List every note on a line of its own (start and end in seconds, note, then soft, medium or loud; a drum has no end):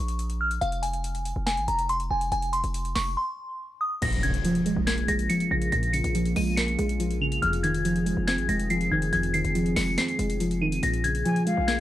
0.00 0.59 A#1 loud
0.00 0.36 C#6 medium
0.08 closed hi-hat medium
0.19 closed hi-hat medium
0.30 closed hi-hat medium
0.41 0.60 F6 medium
0.51 closed hi-hat medium
0.61 1.33 F1 loud
0.61 0.81 F5 medium
0.61 closed hi-hat medium
0.72 closed hi-hat medium
0.83 1.43 G#5 medium
0.83 closed hi-hat medium
0.93 closed hi-hat medium
1.04 closed hi-hat medium
1.15 closed hi-hat soft
1.25 closed hi-hat medium
1.36 1.59 F1 loud
1.46 1.66 G#5 medium
1.46 snare loud
1.46 closed hi-hat medium
1.57 1.67 G#1 loud
1.57 closed hi-hat soft
1.68 2.09 F1 loud
1.68 1.88 A#5 medium
1.68 closed hi-hat medium
1.79 closed hi-hat medium
1.89 2.09 C6 medium
1.89 closed hi-hat medium
2.00 closed hi-hat medium
2.11 2.31 F1 loud
2.11 2.30 G#5 medium
2.21 closed hi-hat medium
2.32 2.62 F1 loud
2.32 2.51 G#5 loud
2.32 closed hi-hat medium
2.42 closed hi-hat medium
2.53 2.93 C6 medium
2.53 closed hi-hat medium
2.64 2.94 F1 loud
2.64 closed hi-hat medium
2.74 closed hi-hat medium
2.85 closed hi-hat soft
2.95 3.16 F1 loud
2.95 3.15 C#6 medium
2.95 snare medium
2.95 open hi-hat medium
3.17 3.77 C6 medium
3.81 4.00 D#6 medium
4.02 4.43 A#1 loud
4.02 5.08 A#2 medium
4.02 7.39 C#3 medium
4.02 7.39 A#3 medium
4.02 10.79 F4 medium
4.02 11.80 G#4 medium
4.02 4.22 A#6 medium
4.02 closed hi-hat medium
4.02 crash loud
4.02 impact medium
4.13 closed hi-hat medium
4.23 5.30 C#3 medium
4.23 4.83 G#6 medium
4.23 closed hi-hat medium
4.34 closed hi-hat medium
4.45 5.29 F3 medium
4.45 closed hi-hat medium
4.55 closed hi-hat soft
4.66 5.07 G#3 medium
4.66 closed hi-hat medium
4.76 5.07 A#1 loud
4.87 5.94 A#3 loud
4.87 5.07 G#6 medium
4.87 snare loud
4.87 closed hi-hat medium
4.98 closed hi-hat soft
5.08 5.29 A#1 loud
5.08 6.15 G#3 medium
5.08 5.28 A#6 medium
5.08 closed hi-hat medium
5.19 closed hi-hat medium
5.29 6.14 F3 loud
5.29 5.49 C#7 medium
5.29 closed hi-hat medium
5.40 closed hi-hat medium
5.51 5.71 A#1 loud
5.51 5.92 C#3 medium
5.51 5.71 A#6 medium
5.62 closed hi-hat medium
5.72 6.03 A#1 loud
5.72 6.79 A#2 loud
5.72 5.92 A#6 loud
5.72 closed hi-hat medium
5.83 closed hi-hat medium
5.93 7.00 C#3 medium
5.93 6.33 C#7 medium
5.93 closed hi-hat medium
6.04 6.35 A#1 loud
6.04 closed hi-hat medium
6.15 6.99 F3 medium
6.15 closed hi-hat medium
6.25 closed hi-hat soft
6.36 6.77 A#1 loud
6.36 6.77 G#3 medium
6.36 6.56 D#7 medium
6.36 open hi-hat medium
6.56 7.43 A#3 loud
6.56 7.17 C#7 medium
6.56 snare loud
6.56 closed hi-hat medium
6.68 closed hi-hat soft
6.79 7.40 A#1 loud
6.79 7.42 G#3 loud
6.79 closed hi-hat medium
6.89 closed hi-hat medium
7.00 7.42 F3 medium
7.00 closed hi-hat medium
7.11 closed hi-hat medium
7.21 7.42 C#3 medium
7.21 7.41 F7 medium
7.32 closed hi-hat medium
7.42 8.14 F1 loud
7.42 8.49 F2 loud
7.42 10.79 D#3 medium
7.42 10.79 C4 medium
7.42 7.62 F6 medium
7.42 closed hi-hat medium
7.53 closed hi-hat medium
7.63 8.70 D#3 medium
7.63 8.24 G#6 medium
7.63 closed hi-hat medium
7.74 closed hi-hat medium
7.85 8.69 F3 medium
7.85 closed hi-hat medium
7.96 closed hi-hat soft
8.06 8.48 G#3 medium
8.06 closed hi-hat medium
8.17 8.40 F1 loud
8.27 9.34 C4 loud
8.27 8.47 G#6 medium
8.27 snare loud
8.27 closed hi-hat medium
8.38 8.48 G#1 loud
8.38 closed hi-hat soft
8.49 8.90 F1 loud
8.49 9.55 G#3 medium
8.49 8.68 A#6 medium
8.49 closed hi-hat medium
8.59 closed hi-hat medium
8.70 9.54 F3 medium
8.70 8.90 C7 medium
8.70 closed hi-hat medium
8.81 closed hi-hat medium
8.91 9.12 F1 loud
8.91 9.33 D#3 medium
8.91 9.11 G#6 medium
9.02 closed hi-hat medium
9.13 9.43 F1 loud
9.13 10.19 F2 loud
9.13 9.32 G#6 loud
9.13 closed hi-hat medium
9.23 closed hi-hat medium
9.34 10.40 D#3 medium
9.34 9.74 C7 medium
9.34 closed hi-hat medium
9.45 9.75 F1 loud
9.45 closed hi-hat medium
9.55 10.39 F3 medium
9.55 closed hi-hat medium
9.66 closed hi-hat soft
9.76 9.97 F1 loud
9.76 10.18 G#3 medium
9.76 9.96 C#7 medium
9.76 snare loud
9.76 open hi-hat medium
9.98 10.83 C4 loud
9.98 10.58 C7 medium
9.98 snare loud
9.98 closed hi-hat medium
10.08 closed hi-hat soft
10.19 10.80 F1 loud
10.19 10.83 G#3 loud
10.19 closed hi-hat medium
10.30 closed hi-hat medium
10.40 10.83 F3 medium
10.40 closed hi-hat medium
10.51 closed hi-hat medium
10.61 10.83 D#3 medium
10.61 10.81 D#7 medium
10.72 closed hi-hat medium
10.83 11.24 A#1 loud
10.83 11.80 A#2 medium
10.83 11.80 C#3 medium
10.83 11.80 A#3 medium
10.83 11.80 F4 medium
10.83 11.03 A#6 medium
10.83 closed hi-hat medium
10.94 closed hi-hat medium
11.04 11.80 C#3 medium
11.04 11.64 G#6 medium
11.04 closed hi-hat medium
11.15 closed hi-hat medium
11.25 11.80 F3 medium
11.25 11.46 G#5 medium
11.25 closed hi-hat medium
11.36 closed hi-hat soft
11.47 11.80 G#3 medium
11.47 11.80 F5 medium
11.47 closed hi-hat medium
11.57 11.80 A#1 loud
11.68 11.80 A#3 loud
11.68 11.80 G#6 medium
11.68 snare loud
11.68 closed hi-hat medium